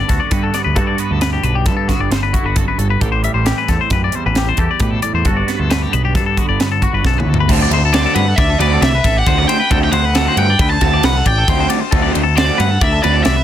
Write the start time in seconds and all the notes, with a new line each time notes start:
Already playing: G2 D3 B3 D4
0.09 D2 F#4 A4, kick, snare, closed hi-hat
0.20 D5
0.31 G2 F#4 B4, kick, closed hi-hat
0.43 A4
0.54 B3 D5, snare, closed hi-hat
0.64 D2 B4
0.75 G2 F#4 A4, kick, closed hi-hat
0.87 D5
0.98 B3 B4, closed hi-hat
1.11 D2 A4
1.21 D3 B4, snare, closed hi-hat
1.33 G4
1.43 B1 D4 B4, closed hi-hat
1.55 G4
1.66 G2 A4, kick, snare, closed hi-hat
1.77 A4
1.88 D3 B3 F#4, kick, snare, closed hi-hat
1.99 G1 D5
2.11 G1 C5, snare, closed hi-hat
2.23 B4
2.33 E4 F#4, kick, closed hi-hat
2.44 G1 F#4 B4
2.56 F#2 A4, kick, closed hi-hat
2.68 B4
2.78 G1 G2 A4, closed hi-hat
2.90 B4
3.01 A1 A2 G4 A4, kick, closed hi-hat
3.12 C5
3.23 G3 E5, closed hi-hat
3.34 A1 C5
3.46 E3 G4, snare, closed hi-hat
3.58 B4
3.68 E2 C4 A4, kick, snare, closed hi-hat
3.81 C5
3.90 F#2 B4, kick, snare, closed hi-hat
4.04 D5
4.12 E2 G3 C5, closed hi-hat
4.26 A1 B4
4.35 G4, snare, closed hi-hat
4.49 C5
4.57 E2 G4 A4, kick, closed hi-hat
4.71 D5
4.80 A2 B2 B4, kick, closed hi-hat
4.91 A4
5.02 A2 D5, closed hi-hat
5.13 E2 C5
5.24 G1 G2 F#4 A4, kick, closed hi-hat
5.37 D5
5.47 B3 B4, snare, closed hi-hat
5.59 D2 A4
5.70 D3 B4, snare, closed hi-hat
5.82 G4
5.92 B1 B3 B4, closed hi-hat
6.03 D4 G4
6.15 G2 A4, kick, snare, closed hi-hat
6.26 A4
6.37 D3 B3 F#4, kick, closed hi-hat
6.49 G1 D5
6.60 G1 B4, snare, closed hi-hat
6.72 A4
6.82 F#4, kick, closed hi-hat
6.93 G1 B4
7.03 B1 F#2 A4, kick, snare
7.18 B4, mid tom
7.26 D2 E2 A4
7.34 floor tom
7.40 B4
7.49 D2 D3 A3 C4 F#4 A4, kick, crash
7.62 D5
7.71 D2 C5, ride
7.85 A4
7.93 D3 A3 C4 F#4 C5 D5, snare, ride
8.06 A4
8.14 G2 B4 F#5, ride
8.28 A4
8.36 D2 D5 E5, kick, snare, ride
8.50 A4
8.59 D2 D3 A3 C4 F#4 B4 D5, ride
8.74 A4
8.82 C2 D5 E5, snare, ride
8.95 B4
9.04 A1 A4, kick, snare, ride
9.17 G4 F#5
9.27 D2 D3 A3 C4 F#4 C5, kick, snare, ride
9.38 D5
9.48 C5 G5, snare, ride
9.60 B4
9.70 D2 D3 A3 C4 F#4 A4 G5, kick, ride
9.82 G4 G5
9.92 D2 C5 F#5, ride
10.05 B4
10.15 D3 A3 C4 F#4 A4, snare, ride
10.28 C5
10.37 G2 F#5 G5, ride
10.50 D5
10.59 D2 B4, kick, ride
10.70 C5 A5
10.81 D2 D3 A3 C4 F#4 A4 A5, kick, snare, ride
10.94 D5
11.03 C2 B4 F#5, snare, ride
11.17 A4
11.26 A1 D5 G5, kick, ride
11.38 A4
11.48 D2 D3 A3 C4 F#4 C5, kick, ride
11.60 C5
11.70 D5, snare, ride
11.80 C5
11.91 D2 D3 A3 C4 F#4 A4, kick, ride
12.02 D5
12.13 D2 C5, ride
12.23 A4
12.36 D3 A3 C4 F#4 C5 D5, snare, ride
12.47 A4
12.58 G2 B4 F#5, ride
12.71 A4
12.81 D2 D5 E5, kick, snare, ride
12.92 A4
13.03 D2 D3 A3 C4 F#4 B4 D5, ride
13.14 A4
13.24 C2 D5 E5, snare, ride
13.36 B4